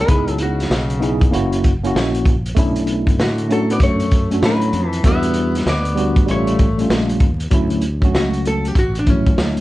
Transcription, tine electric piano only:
0.07 B3 D#4 E4 G#4
1.00 B3 D#4 E4 G#4
1.31 A#3 C#4 E4 F#4
1.83 A#3 C#4 E4 F#4
2.55 A3 C#4 D4 E4
3.48 A3 C#4 D4 F#4
4.31 A3 C#4 D4 F#4
5.03 G3 B3 D4 F#4
5.95 G3 B3 D4 F#4
6.26 G3 A3 C#4 F4
6.78 G3 A3 C#4 F4
7.51 F#3 A3 C#4 E4
8.01 F#3 A3 C#4 F#4
9.06 F3 A3 C#4 E4
9.12 F#3

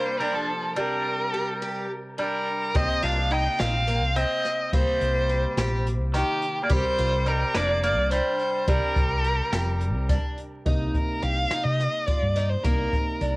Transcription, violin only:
Already playing: C5
0.19 A#4
0.34 A4
0.76 A#4
2.20 A#4
2.76 D#5
3.03 F5
3.32 G5
3.59 F5
4.16 D#5
4.73 C5
6.15 G4
6.65 D5
6.72 C5
7.28 A#4
7.57 D5
7.85 D5
8.13 C5
8.69 A#4
10.95 A#4
11.23 F5
11.64 D#5
12.06 D5
12.49 C5
12.64 A#4

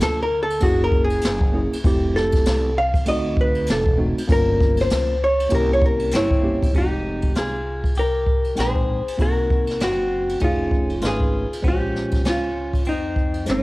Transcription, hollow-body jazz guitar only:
0.03 A4
0.23 A#4
0.43 A4
0.63 F#4
0.84 A#4
1.04 G#4
2.16 A4
2.78 F5
3.08 D#5
3.41 B4
3.71 A4
4.32 A#4
4.81 C5
5.24 C#5
5.55 A#4
5.73 C#5
5.86 A#4
6.16 E4 C#5
6.78 G4
7.38 G#4
7.99 A#4
8.60 C5
9.22 A#4
9.84 F#4
10.44 F4
11.06 G#4
11.68 G4
12.30 F4
12.89 D#4
13.51 C#4

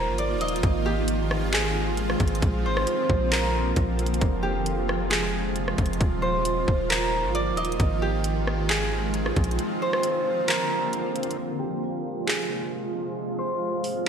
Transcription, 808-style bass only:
0.07 G1
0.35 D#1
0.63 G#1
2.20 G#1
2.42 A#1
2.65 G#1
3.10 A#1
3.77 A#1
4.21 F1
5.78 F1
6.01 D#1
6.68 D#1
7.24 G1
7.52 D#1
7.80 G#1
9.37 A#1

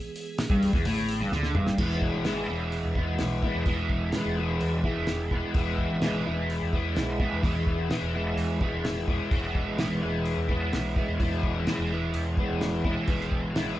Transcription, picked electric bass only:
0.50 G1
0.73 E1
0.85 A1
1.20 G1
1.32 D2
1.56 G1
1.78 E1
2.14 G#1
2.49 E1
2.85 E2
3.20 B1
3.55 E2
3.90 E1
4.25 E1
4.61 E2
4.97 E1
5.31 E1
5.55 E1
5.91 G#1
6.27 E1
6.62 E2
6.97 B1
7.32 E2
7.67 E1
8.02 E1
8.37 E2
8.73 E1
9.08 E1
9.31 E1
9.68 G#1
10.03 E1
10.37 E2
10.73 B1
11.08 E2
11.43 E1
11.79 E1
12.14 E2
12.49 E1
12.84 E1
13.08 E1
13.43 G#1

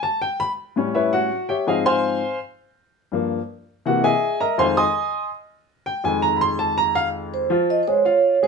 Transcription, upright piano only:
0.03 A5
0.22 G5
0.40 B5
0.76 A2 G3 C#4
0.95 E4 B4 C#5 E5
1.13 F#4 F#5
1.49 G4 C#5 E5 G5
1.67 G#2 F3 C4 G#4 D#5 F5 G#5
1.86 C5 F5 G#5 C6
3.12 G2 F3 A#3
3.86 C3 E3 A#3 F#4 F#5
4.04 G#4 D#5 E5 G#5
4.40 A#4 D#5 E5 A#5
4.58 F2 D#3 G#3 C5 F5 G#5 C6
4.77 D#5 G#5 C6 D#6
5.86 G5
6.04 F2 D#3 G#3 G#5
6.22 A#5
6.37 B5
6.41 C6
6.59 A5
6.78 A#5
6.95 F5
7.50 F3 F4
7.88 G#3 G#4
8.05 F4 F5
8.43 G#3 G#4

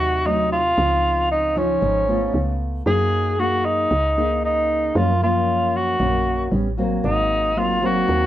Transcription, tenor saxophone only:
Already playing: F#4
0.26 D#4
0.52 F4
1.31 D#4
1.57 C#4
2.87 G#4
3.40 F#4
3.65 D#4
4.45 D#4
4.97 F4
5.23 F4
5.76 F#4
7.04 D#4
7.58 F4
7.86 F#4

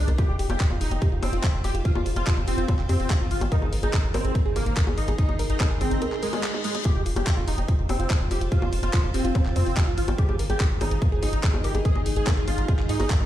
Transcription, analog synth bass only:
0.08 C2
0.29 F1
0.39 F1
0.50 F1
0.71 F1
0.81 F1
0.91 F1
1.12 F1
1.23 F1
1.33 F1
1.54 F1
1.64 F1
1.75 F1
1.96 F1
2.06 F1
2.16 F1
2.37 F1
2.48 F1
2.58 F1
2.79 F1
2.89 F2
3.00 F1
3.21 G#1
3.31 G#1
3.41 G#1
3.62 G#1
3.73 G#1
3.83 G#1
4.04 G#1
4.14 G#1
4.25 G#1
4.46 G#1
4.56 G#1
4.66 G#1
4.87 G#1
4.98 G#1
5.08 G#1
5.29 G#1
5.39 G#1
5.50 G#1
5.71 G#1
5.81 G#1
5.91 G#1
6.96 F1
7.06 F1
7.16 F1
7.37 F1
7.48 F1
7.58 F1
7.79 F1
7.89 F1
8.00 F1
8.21 F1
8.31 F1
8.41 F1
8.62 F1
8.73 F1
8.83 F1
9.04 F1
9.14 F1
9.25 F1
9.46 F1
9.56 F2
9.66 F1
9.87 G#1
9.98 G#1
10.08 G#1
10.29 G#1
10.39 G#1
10.50 G#1
10.71 G#1
10.81 G#1
10.91 G#1
11.12 G#1
11.23 G#1
11.33 G#1
11.54 G#1
11.64 G#1
11.75 G#1
11.95 G#1
12.06 G#1
12.16 G#1
12.37 G#1
12.48 G#1
12.58 G#1
12.79 G#1
12.89 G#2
13.00 G#1
13.21 G#1

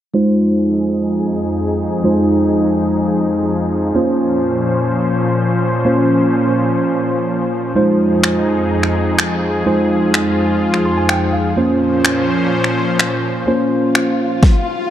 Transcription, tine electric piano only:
0.14 G#3 D#4 F4 C5
2.04 G#3 D#4 F4 C5
3.95 A#3 C#4 F4 C5
5.85 A#3 C#4 F4 C5
7.75 G#3 D#4 F4 C5
9.66 G#3 D#4 F4 C5
10.85 C6
10.97 G#5
11.09 G5
11.33 F5
11.56 A#3 C#4 F4 C5
13.47 A#3 C#4 F4 C5

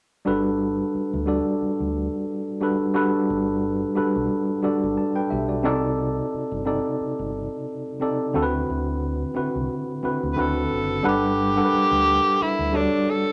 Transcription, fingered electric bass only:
0.27 G1
0.95 muted fingered electric bass stroke
1.13 D2
1.62 muted fingered electric bass stroke
1.80 D2
3.30 G1
3.98 muted fingered electric bass stroke
4.16 B1
4.64 muted fingered electric bass stroke
4.83 G1
5.32 B1
5.66 C2
6.34 muted fingered electric bass stroke
6.51 G1
7.00 muted fingered electric bass stroke
7.19 G1
8.35 D2
8.69 D2
9.37 muted fingered electric bass stroke
9.55 C2
10.04 muted fingered electric bass stroke
10.23 D2
10.38 D2
10.72 F#1
11.06 G1
11.73 muted fingered electric bass stroke
11.91 D2
12.40 muted fingered electric bass stroke
12.59 D2

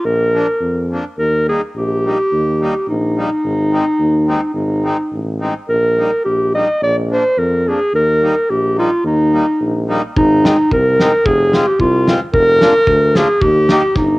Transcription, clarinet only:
0.05 A#4
1.18 A#4
1.49 G#4
1.77 G4
2.89 D#4
4.54 D#4
5.69 A#4
6.25 G4
6.55 D#5
6.83 D5
7.13 C5
7.38 A#4
7.68 G#4
7.95 A#4
8.50 G4
8.79 F4
9.06 D#4
10.18 D#4
10.73 A#4
11.26 G#4
11.68 G4
11.80 F4
12.34 A#4
13.16 G#4
13.42 G4
13.97 D#4

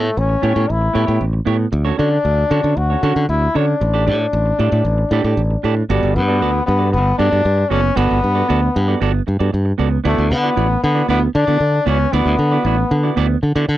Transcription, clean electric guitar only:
0.04 muted clean electric guitar stroke
0.16 muted clean electric guitar stroke
0.29 muted clean electric guitar stroke
0.42 B3 E4 G4 C#5
0.55 B3 E4 G4 C#5
0.68 muted clean electric guitar stroke
0.81 muted clean electric guitar stroke
0.93 B3 E4 G4 C#5
1.07 B3 E4 G4 C#5
1.33 muted clean electric guitar stroke
1.45 B3 E4 G4 C#5
1.59 muted clean electric guitar stroke
1.72 muted clean electric guitar stroke
1.85 C#4 F#4 A4 C#5
1.98 C#4 F#4 A4 C#5
2.11 muted clean electric guitar stroke
2.24 muted clean electric guitar stroke
2.38 muted clean electric guitar stroke
2.50 C#4 F#4 A4 C#5
2.63 C#4 F#4 A4 C#5
2.77 muted clean electric guitar stroke
2.90 C#4 F#4 A4 C#5
3.03 C#4 F#4 A4 C#5
3.16 muted clean electric guitar stroke
3.42 muted clean electric guitar stroke
3.55 C#4 F#4 A4 C#5
3.68 muted clean electric guitar stroke
3.81 muted clean electric guitar stroke
3.94 D4 G4 A4 D5
4.06 D4 G4 A4 D5
4.20 muted clean electric guitar stroke
4.33 muted clean electric guitar stroke
4.46 muted clean electric guitar stroke
4.59 D4 G4 A4 D5
4.71 D4 G4 A4 D5
4.86 muted clean electric guitar stroke
4.98 muted clean electric guitar stroke
5.12 D4 G4 A4 D5
5.24 D4 G4 A4 D5
5.51 muted clean electric guitar stroke
5.63 D4 G4 A4 D5
5.77 muted clean electric guitar stroke
5.89 B3 F#4 A4 D5
6.15 muted clean electric guitar stroke
6.28 B3 F#4 A4 D5
6.41 B3 F#4 A4 D5
6.53 muted clean electric guitar stroke
6.66 muted clean electric guitar stroke
6.79 B3 F#4 A4 D5
6.92 muted clean electric guitar stroke
7.06 muted clean electric guitar stroke
7.18 B3 F#4 A4 D5
7.31 B3 F#4 A4 D5
7.46 muted clean electric guitar stroke
7.58 muted clean electric guitar stroke
7.70 B3 F#4 A4 D5
7.83 muted clean electric guitar stroke
7.96 B3 F#4 A4 D5
8.23 muted clean electric guitar stroke
8.35 B3 F#4 A4 D5
8.48 B3 F#4 A4 D5
8.63 muted clean electric guitar stroke
8.75 muted clean electric guitar stroke
8.88 B3 F#4 A4 D5
9.01 B3 F#4 A4 D5
9.14 muted clean electric guitar stroke
9.27 muted clean electric guitar stroke
9.39 B3 F#4 A4 D5
9.52 muted clean electric guitar stroke
9.65 muted clean electric guitar stroke
9.78 B3 F#4 A4 D5
9.91 muted clean electric guitar stroke
10.04 B3 E4 F#4 D5
10.30 muted clean electric guitar stroke
10.43 B3 E4 F#4 D5
10.56 B3 E4 F#4 D5
10.70 muted clean electric guitar stroke
10.83 muted clean electric guitar stroke
10.95 B3 E4 F#4 D5
11.08 B3 E4 F#4 D5
11.22 muted clean electric guitar stroke
11.35 muted clean electric guitar stroke
11.47 B3 E4 F#4 D5
11.74 muted clean electric guitar stroke
11.86 B3 E4 F#4 D5
12.00 muted clean electric guitar stroke
12.12 B3 E4 F#4 D5
12.39 muted clean electric guitar stroke
12.52 B3 E4 F#4 D5
12.65 B3 E4 F#4 D5
12.78 muted clean electric guitar stroke
12.91 muted clean electric guitar stroke
13.03 B3 E4 F#4 D5
13.16 B3 E4 F#4 D5
13.29 muted clean electric guitar stroke
13.42 muted clean electric guitar stroke
13.55 B3 E4 F#4 D5

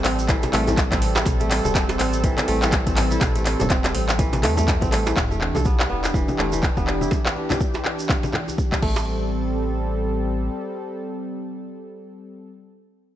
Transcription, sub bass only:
0.04 A1
0.53 A1
0.92 A1
1.26 A1
1.65 E1
1.99 A1
2.48 A1
2.87 A1
3.21 A1
3.60 E1
3.94 A1
4.43 E2
4.82 A1
5.17 E1
5.55 B1
5.90 E1
6.39 E1
6.77 E1
8.82 A1

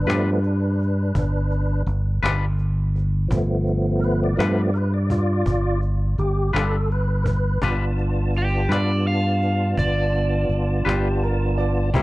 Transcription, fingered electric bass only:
0.07 G2
1.15 G1
1.87 G1
2.23 G1
3.31 G1
4.38 G2
5.46 G1
6.18 G1
6.54 G1
7.62 G1
8.69 G2
9.77 G1
10.49 G1
10.86 G1
11.94 C2

